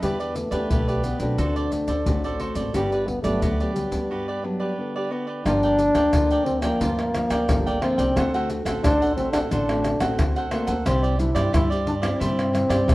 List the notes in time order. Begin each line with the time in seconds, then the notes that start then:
0.02 E2 E3 G3 B3 D4 E4 G4 B4 D5, pandeiro, maracas, surdo
0.20 G4 B4 D5, pandeiro, maracas
0.35 A3, muted cavaquinho stroke, pandeiro, maracas
0.51 E2 B3 D4 G4 B4 D5, pandeiro, maracas, surdo
0.70 B1 B2 E4 G4 B4 D5, pandeiro, maracas, surdo
0.88 G4 B4 D5, pandeiro, maracas
1.04 B3, pandeiro, maracas
1.20 B1 A3 C4 D4 F#4, pandeiro, maracas, surdo
1.38 D2 D3 F#4 A4 C5 D5, pandeiro, maracas, surdo
1.56 A4 C5 D5, pandeiro, maracas
1.72 A3 C4 F#4, muted cavaquinho stroke, pandeiro, maracas, surdo
1.87 D2 A4 C5 D5, pandeiro, maracas
2.06 A1 A2 A3 C4 F#4, pandeiro, maracas, surdo
2.24 A4 C5 D5, pandeiro, maracas
2.40 F#4 A4 C5 D5, pandeiro
2.56 G#1 A4 C5 D5, pandeiro, maracas, surdo
2.74 G1 G2 G3 B3 D4 F#4 G4 B4 D5, pandeiro, maracas, surdo
2.92 G4 B4 D5, pandeiro, maracas
3.07 B3, muted cavaquinho stroke, pandeiro, surdo
3.22 G1 F#3 A3 B3 D4 G4 B4 D5, pandeiro, maracas, surdo
3.42 D2 D3 F#4 G4 B4 D5, pandeiro, maracas, surdo
3.60 F#3 B3 D4 G4 B4 D5, pandeiro, maracas
3.74 G3, pandeiro, maracas
3.92 D2 B3 D4, pandeiro, maracas, surdo
4.10 G2 F#4 G4 B4 D5
4.28 G4 B4 D5
4.43 F#3 B3 D4, muted cavaquinho stroke
4.60 G4 B4 D5
4.78 D3 B3 D4
4.96 G4 B4 D5
5.11 B3 F#4 G4 B4 D5
5.27 G4 B4 D5
5.45 G1 G2 F3 A#3 D4 F4 A#4 D5 G5, pandeiro, tamborim, maracas, surdo
5.63 A#4 D5 G5, pandeiro, maracas
5.79 muted cavaquinho stroke, pandeiro, maracas
5.95 D2 F3 A#3 D4 A#4 D5 G5, pandeiro, tamborim, maracas, surdo
6.13 D2 D3 F4 A#4 D5 G5, pandeiro, tamborim, maracas, surdo
6.31 A#4 D5 G5, pandeiro, maracas
6.45 C4, pandeiro
6.61 F3 A#3 D4 A#4 D5 G5, pandeiro, tamborim, maracas, surdo
6.81 D2 G2 F4 A#4 D5 G5, pandeiro, maracas, surdo
6.99 pandeiro, tamborim, maracas
7.14 F3 A#3 D4, muted cavaquinho stroke, pandeiro, tamborim, maracas, surdo
7.30 D2 A#4 D5 G5, pandeiro, tamborim, maracas, surdo
7.48 G1 D3 F3 A#3 D4, pandeiro, tamborim, maracas, surdo
7.67 A#4 D5 G5, pandeiro, maracas
7.81 F3 A#3 C4 D4 F4 A#4 D5 G5, pandeiro, tamborim
7.97 C2 A#4 D5 G5, pandeiro, maracas, surdo
8.16 D2 D3 A3 C4 D4 F#4 A4 C5 F#5, pandeiro, tamborim, maracas, surdo
8.33 A3 C4 F#4 A4 C5 F#5, pandeiro, maracas
8.50 muted cavaquinho stroke, pandeiro, maracas
8.65 A1 A3 C4 F#4 A4 C5 F#5, pandeiro, tamborim, maracas, surdo
8.84 A1 A2 D4 A4 C5 F#5, pandeiro, tamborim, maracas, surdo
9.02 A4 C5 F#5, pandeiro, maracas
9.16 A3 C4 F#4, pandeiro
9.32 D4 A4 C5 F#5, pandeiro, tamborim, maracas, surdo
9.51 A1 D3 D4 A4 C5 F#5, pandeiro, maracas, surdo
9.69 A3 C4 F#4, pandeiro, tamborim, maracas
9.84 muted cavaquinho stroke, pandeiro, tamborim, maracas
10.00 A1 A3 C4 F#4 A4 C5 F#5, pandeiro, tamborim, maracas, surdo
10.18 D2, pandeiro, tamborim, maracas, surdo
10.36 A4 C5 F#5, pandeiro, maracas
10.51 A3 A#3 C4 D4 F#4 A4 C5 F#5, pandeiro, tamborim
10.67 D2 A4 C5 F#5, pandeiro, maracas, surdo
10.86 C2 C3 G3 C4 D4 E4 G4 C5 D5, pandeiro, tamborim, maracas, surdo
11.03 G4 C5 D5, pandeiro, maracas
11.19 G3 D4 E4, muted cavaquinho stroke, pandeiro, maracas
11.35 G2 G3 D4 E4 G4 C5 D5, pandeiro, tamborim, maracas, surdo
11.53 G2 G3 E4 G4 C5 D5, pandeiro, tamborim, maracas, surdo
11.70 G4 C5 D5, pandeiro, maracas
11.87 D4, pandeiro
12.02 G3 C4 D4 E4 G4 C5 D5, pandeiro, tamborim, maracas, surdo
12.20 G2 C3 E4 G4 C5 D5, pandeiro, maracas, surdo
12.39 pandeiro, tamborim, maracas
12.53 G3 D4 E4, muted cavaquinho stroke, pandeiro, tamborim, maracas
12.69 G2 G4 C5 D5, pandeiro, tamborim, maracas, surdo
12.87 C2 G3 D4 E4, pandeiro, tamborim, maracas, surdo